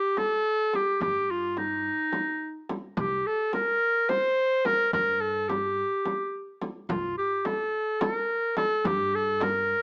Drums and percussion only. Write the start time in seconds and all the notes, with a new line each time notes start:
0.17 frame drum
0.73 frame drum
1.01 frame drum
1.57 frame drum
2.12 frame drum
2.69 frame drum
2.97 frame drum
3.53 frame drum
4.09 frame drum
4.65 frame drum
4.93 frame drum
5.50 frame drum
6.05 frame drum
6.62 frame drum
6.89 darbuka dum, frame drum
7.31 darbuka ka
7.45 darbuka tek, frame drum
7.61 darbuka ka
7.73 darbuka ka
8.01 darbuka tek, frame drum
8.29 darbuka ka
8.57 darbuka tek, frame drum
8.84 darbuka dum, frame drum
9.40 darbuka tek, frame drum
9.68 darbuka ka